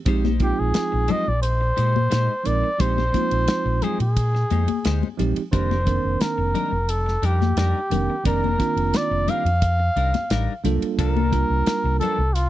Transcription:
0.05 A#1 F3 G#3 C4 D#4 G4 C5, kick, hi-hat pedal, ride
0.25 D#4 G4 C5, snare, high conga
0.40 F3 G#3 C4 D#4 F4 G4, muted clean electric guitar stroke, kick, hi-hat pedal, ride
0.59 A#1 G#4
0.74 muted clean electric guitar stroke, muted fingered electric bass stroke, snare, hi-hat pedal, ride
0.92 A#1, muted clean electric guitar stroke
1.08 G#3 D#4 G4 C5 D#5, hi-hat pedal, ride, low conga
1.27 A#1 D5, muted clean electric guitar stroke
1.42 C5, hi-hat pedal, ride
1.61 muted clean electric guitar stroke
1.76 A#2 G#3 D#4 G4 C5, hi-hat pedal, ride
1.94 muted clean electric guitar stroke, high conga
2.10 A#2 G#3 D#4 G4 C5, snare, hi-hat pedal, ride
2.44 A#1 F3 G#3 C4 D#4 A#4 D5, muted clean electric guitar stroke, hi-hat pedal, ride
2.64 muted clean electric guitar stroke
2.78 A#1 F3 G#3 C4 D#4 G4 C5, kick, hi-hat pedal, ride
2.98 D#4 G4 C5, snare, high conga
3.13 F3 G#3 C4 D#4 F4, muted clean electric guitar stroke, kick, hi-hat pedal, ride, high conga
3.31 A#1, ride
3.47 muted clean electric guitar stroke, snare, hi-hat pedal, ride
3.65 A#1, muted clean electric guitar stroke
3.82 G#3 D#4 G4 G#4 C5, hi-hat pedal, ride, low conga
4.00 A#2 G#4, muted clean electric guitar stroke, ride
4.16 kick, hi-hat pedal, ride
4.35 muted clean electric guitar stroke, snare
4.50 F2 G#3 D#4 G4 C5, hi-hat pedal, ride, high conga
4.68 muted clean electric guitar stroke, muted fingered electric bass stroke, ride, high conga
4.85 D2 G#3 D#4 G4 C5, snare, hi-hat pedal, ride
5.03 high conga
5.18 A#1 F3 G#3 C4 D#4 G4, muted clean electric guitar stroke, hi-hat pedal, ride, low conga
5.36 muted clean electric guitar stroke, muted fingered electric bass stroke, ride
5.52 F1 D#3 G3 A#3 C4 D4 D#4 G4 A#4 C5, kick, hi-hat pedal, ride
5.71 D4 D#4 A#4, snare, high conga
5.85 D#3 A#3 C4 D4 A#4, muted clean electric guitar stroke, kick, hi-hat pedal, ride
6.05 F1
6.20 A#4, muted fingered electric bass stroke, muted clean electric guitar stroke, snare, hi-hat pedal, ride
6.38 F1, muted clean electric guitar stroke
6.54 G3 D4 D#4 A#4, hi-hat pedal, ride, low conga
6.72 F1, muted clean electric guitar stroke
6.89 A4, hi-hat pedal, ride
7.06 muted clean electric guitar stroke, snare
7.22 F2 G3 D4 D#4 G4 A#4, hi-hat pedal, ride
7.41 muted clean electric guitar stroke, snare, high conga
7.56 F2 G3 D4 D#4 A#4, snare, hi-hat pedal, ride
7.90 F1 D#3 A#3 C4 D4 A#4, muted clean electric guitar stroke, hi-hat pedal, ride, low conga
8.10 muted clean electric guitar stroke
8.24 F1 D#3 G3 A#3 C4 D4 D#4 A#4, kick, hi-hat pedal, ride
8.44 D4 D#4 A#4, high conga
8.58 D#3 A#3 C4 D4 F4, muted clean electric guitar stroke, kick, hi-hat pedal, ride
8.76 F1, ride
8.94 D5, muted clean electric guitar stroke, snare, hi-hat pedal, ride
9.11 F1, muted clean electric guitar stroke
9.28 G3 D4 D#4 A#4 F5, hi-hat pedal, ride, low conga
9.45 F2, muted clean electric guitar stroke, ride
9.62 kick, hi-hat pedal, ride
9.79 muted clean electric guitar stroke
9.96 C2 G3 D4 D#4 A#4, hi-hat pedal, ride
10.13 muted fingered electric bass stroke, muted clean electric guitar stroke, snare, ride, high conga
10.30 A1 G3 D4 D#4 A#4, snare, hi-hat pedal, ride
10.64 C2 G3 A#3 D4 F4 A4, muted clean electric guitar stroke, hi-hat pedal, ride, low conga
10.82 muted fingered electric bass stroke, muted clean electric guitar stroke, ride
10.98 C2 F3 A#3 D4 A4 A#4, kick, hi-hat pedal, ride
11.16 A#3 D4 A4, high conga
11.31 G3 A#3 D4 F4 A#4, muted clean electric guitar stroke, kick, hi-hat pedal, ride
11.50 C2
11.66 muted fingered electric bass stroke, muted clean electric guitar stroke, snare, hi-hat pedal, ride
11.84 C2, muted clean electric guitar stroke
12.00 F3 A#3 D4 A4, hi-hat pedal, ride, low conga
12.18 C2, muted clean electric guitar stroke
12.35 F4, hi-hat pedal, ride

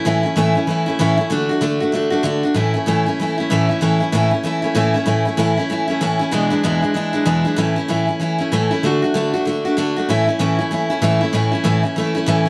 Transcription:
0.05 A2 E3 A3 C#4 E4
0.23 A3 C#4 E4
0.36 A2 E3 A3 C#4 E4
0.55 A3 C#4 E4
0.67 E3 A3 C#4 E4
0.86 A3 C#4 E4
0.99 A2 E3 A3 C#4 E4
1.17 A3 C#4 E4
1.30 D3 A3 D4 F#4
1.49 A3 D4 F#4
1.61 D3 A3 D4 F#4
1.80 A3 D4 F#4
1.92 D3 A3 D4 F#4
2.10 A3 D4 F#4
2.23 D3 A3 D4 F#4
2.43 A3 D4 F#4
2.54 A2 E3 A3 C#4 E4
2.74 A3 C#4 E4
2.86 A2 E3 A3 C#4 E4
3.06 A3 C#4 E4
3.20 E3 A3 C#4 E4
3.38 A3 C#4 E4
3.50 A2 E3 A3 C#4 E4
3.69 A3 C#4 E4
3.81 A2 E3 A3 C#4 E4
4.00 A3 C#4 E4
4.12 A2 E3 A3 C#4 E4
4.31 A3 C#4 E4
4.43 E3 A3 C#4 E4
4.62 A3 C#4 E4
4.75 A2 E3 A3 C#4 E4
4.94 A3 C#4 E4
5.06 A2 E3 A3 C#4 E4
5.25 A3 C#4 E4
5.37 A2 E3 A3 C#4 E4
5.57 A3 C#4 E4
5.70 E3 A3 C#4 E4
5.88 A3 C#4 E4
6.01 A2 E3 A3 C#4 E4
6.19 A3 C#4 E4
6.31 E2 B2 E3 G#3 D4 E4
6.50 E3 G#3 D4 E4
6.64 E2 B2 E3 G#3 D4 E4
6.82 E3 G#3 D4 E4
6.94 E3 G#3 D4 E4
7.13 E3 G#3 D4 E4
7.26 E2 B2 E3 G#3 D4 E4
7.45 E3 G#3 D4 E4
7.56 A2 E3 A3 C#4 E4
7.76 A3 C#4 E4
7.88 A2 E3 A3 C#4 E4
8.07 A3 C#4 E4
8.20 E3 A3 C#4 E4
8.38 A3 C#4 E4
8.52 A2 E3 A3 C#4 E4
8.71 A3 C#4 E4
8.83 D3 A3 D4 F#4
9.02 A3 D4 F#4
9.14 D3 A3 D4 F#4
9.34 A3 D4 F#4
9.45 D3 A3 D4 F#4
9.65 A3 D4 F#4
9.77 D3 A3 D4 F#4
9.96 A3 D4 F#4
10.09 A2 E3 A3 C#4 E4
10.27 A3 C#4 E4
10.39 A2 E3 A3 C#4 E4
10.59 A3 C#4 E4
10.71 E3 A3 C#4 E4
10.90 A3 C#4 E4
11.02 A2 E3 A3 C#4 E4
11.21 A3 C#4 E4
11.33 A2 E3 A3 C#4 E4
11.52 A3 C#4 E4
11.64 A2 E3 A3 C#4 E4
11.83 A3 C#4 E4
11.96 E3 A3 C#4 E4
12.15 A3 C#4 E4
12.26 A2 E3 A3 C#4 E4
12.45 E4

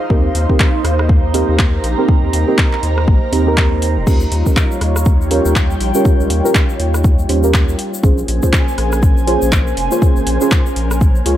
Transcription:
Already playing: D#4 C5 F5
0.10 D#2 A#3 C4 D#4 G4 A#4 C5, kick
0.35 D#2, open hi-hat
0.49 C4 D#4 G4 A#4, kick
0.60 kick, clap
0.84 D#2, cross-stick, open hi-hat
0.99 cross-stick
1.04 A#5
1.09 kick
1.34 C4 D#4 G4 A#4, open hi-hat
1.49 D#2
1.59 kick, clap
1.84 A#1, open hi-hat
1.98 C4 D#4 G4 A#4
2.08 C4 G4 A#4, kick
2.23 D#2
2.33 D#2, open hi-hat
2.48 C4 D#4 G4 A#4
2.58 kick, clap
2.73 clap
2.83 D#2, open hi-hat
2.98 cross-stick
3.08 A#1, kick
3.32 D#2 C4 D#4 G4 C5, open hi-hat
3.46 C4 D#4 G4 A#4
3.57 kick, clap
3.82 open hi-hat
3.97 D#1
4.06 D#2 G3 C#4 F4 G4 A#4 C#5, kick, crash, shaker
4.20 shaker
4.32 D#2, open hi-hat
4.43 C#4 F4 G4 A#4 C#5, kick, shaker
4.56 kick, clap, shaker
4.72 shaker
4.81 D#2, cross-stick, open hi-hat
4.96 cross-stick, shaker
5.01 G5
5.05 kick, shaker
5.21 shaker
5.30 C#4 F4 G4 A#4, open hi-hat
5.45 D#2, shaker
5.56 kick, clap, shaker
5.71 shaker
5.80 A#1, open hi-hat
5.94 C#4 F4 G4 A#4, shaker
6.05 C#4 G4 A#4, kick, shaker
6.20 C#2, shaker
6.30 D#2, open hi-hat
6.44 C#4 F4 G4 A#4, shaker
6.55 kick, clap, shaker
6.69 shaker
6.80 D#2, open hi-hat
6.94 cross-stick, shaker
7.04 kick, shaker
7.19 shaker
7.29 D#2 C#4 F4 G4 C5, open hi-hat
7.43 C#4 F4 G4 A#4, shaker
7.54 kick, clap, shaker
7.69 shaker
7.79 A#3 C#4 G#4 C5, open hi-hat
7.94 shaker
8.03 A#1 C#4 F4 G#4 C5 G#5, kick, shaker
8.18 shaker
8.26 A#1 C5, open hi-hat
8.43 C#4 F4 G#4 C5, kick, shaker
8.53 kick, clap, shaker
8.68 shaker
8.78 A#1, cross-stick, open hi-hat
8.92 cross-stick, shaker
9.03 kick, shaker
9.18 shaker
9.27 C#4 F4 G#4 C5, open hi-hat
9.42 A#1, shaker
9.52 kick, clap, shaker
9.67 shaker
9.77 F1 A#4, open hi-hat
9.91 C#4 F4 G#4 C5, shaker
10.02 C#4 F4 G#4 C5, kick, shaker
10.16 G#1, shaker
10.27 A#1, open hi-hat
10.41 C#4 F4 G#4 C5, shaker
10.51 kick, clap, shaker
10.66 shaker
10.76 A#1, open hi-hat
10.91 cross-stick, shaker
11.01 kick, shaker
11.16 shaker
11.25 C#2 C#4 F4 G#4 C#5, open hi-hat

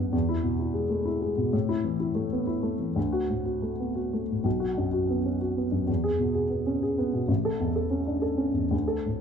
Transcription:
Already playing: B1 F#2 B3 C#4 F#4
0.12 E2
0.29 E4
0.44 B2
0.59 E4
0.74 G#3
0.90 A3
1.05 E4
1.21 G#3
1.37 B2
1.53 A2
1.69 E4
1.85 E3
2.00 E4
2.15 A3
2.32 B3
2.47 E4
2.63 A3
2.79 E3
2.96 D2
3.12 F#4
3.30 A2
3.45 F#4
3.62 A3
3.80 B3
3.95 F#4
4.13 A3
4.31 A2
4.44 B1
4.60 F#4
4.77 F#2
4.93 F#4
5.10 B3
5.25 C#4
5.41 F#4
5.57 B3
5.72 F#2
5.87 E2
6.04 G#4
6.19 B2
6.34 G#4
6.50 B3
6.66 C#4
6.83 G#4
6.98 B3
7.13 B2
7.28 A1
7.45 A4
7.60 E2
7.76 A4
7.91 C#4
8.07 D4
8.22 A4
8.37 C#4
8.53 E2
8.71 D2
8.88 A4
9.06 A2

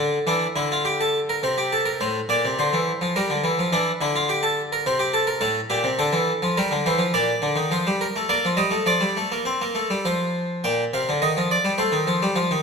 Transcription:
Already playing: A4
0.00 D3
0.27 E3 D4
0.56 D3 E4
0.72 F4
0.85 G4
1.01 A4
1.29 A#4
1.43 C3 C5
1.58 G4
1.73 A4
1.85 A#4
2.01 A2 C5
2.29 A#2 D5
2.45 C3
2.59 D3 C5
2.73 E3
3.01 F3
3.16 G3 A#4
3.30 D3
3.44 E3
3.59 F3
3.73 E3 D4
4.01 D3 E4
4.16 F4
4.29 G4
4.43 A4
4.72 A#4
4.86 C3 C5
4.99 G4
5.14 A4
5.27 A#4
5.41 A2 A4
5.70 A#2 G4
5.84 C3
5.99 D3 A4
6.13 E3
6.42 F3
6.57 G3 A#4
6.71 D3
6.86 E3 C5
6.98 F3
7.14 A#2 D5
7.42 D3
7.56 D#3
7.71 F3 C5
7.87 G3
8.01 A#4
8.16 A3
8.29 A#3 D5
8.45 F3
8.57 G3 D#5
8.71 A3
8.86 F3 D5
9.01 G3
9.17 A3
9.32 A#3
9.45 C4
9.61 A#3
9.75 A3
9.90 G3
10.05 F3 C5
10.64 A#2 G5
10.94 C3 F5
11.09 D3
11.22 D#3 D#5
11.37 F3
11.51 D5
11.65 G3
11.78 A3 C5
11.92 D#3
12.07 F3
12.22 G3
12.36 F3
12.51 D#3

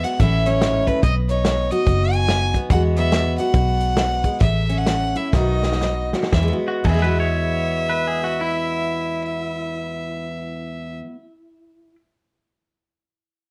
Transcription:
Already playing: E3 G#3 B3
0.04 F#4 F#5, closed hi-hat
0.20 A1 A2 E3 A3 C#4 E4 E5, kick, closed hi-hat
0.46 C#4 C#5, closed hi-hat
0.62 G#2, snare, closed hi-hat
0.87 A2 B4, kick, closed hi-hat
1.03 B1 B2 B3 D#5, kick, closed hi-hat
1.29 D#4 C#5, closed hi-hat
1.45 D#3, snare, closed hi-hat
1.71 F#4 D#5, closed hi-hat
1.86 F#1 F#2, kick, closed hi-hat
2.13 G#5, closed hi-hat
2.28 D#3, snare, closed hi-hat
2.54 B3, kick, closed hi-hat
2.70 E2 E3 G#3 B3 F#4 F#5, kick, closed hi-hat
2.96 B3 E5, closed hi-hat
3.12 E3, snare, closed hi-hat
3.38 F#4 F#5, closed hi-hat
3.54 B1 B2, kick, closed hi-hat
3.81 closed hi-hat
3.97 E3, snare, closed hi-hat
4.24 G#3, kick, closed hi-hat
4.40 A1 A2 A3 E5, kick, closed hi-hat
4.69 C#4, closed hi-hat
4.78 F#5
4.86 E3, snare, closed hi-hat
5.15 E4 E5, closed hi-hat
5.33 B1 B2 D#3 B3 D#4 F#4 D#5, kick, snare
5.63 D#4, snare
5.72 snare
5.81 D#3, snare
6.13 F#4, snare
6.23 snare
6.32 E2 E5, kick, snare
6.38 E3
6.43 G#3
6.48 B3
6.53 F#4
6.68 F#4
6.84 E2 G#4 E5, kick, crash
6.89 E3
6.94 G#3
6.99 B3 B4
7.04 F#4
7.20 C#5
7.89 B4
8.07 G#4
8.24 F#4
8.41 E4

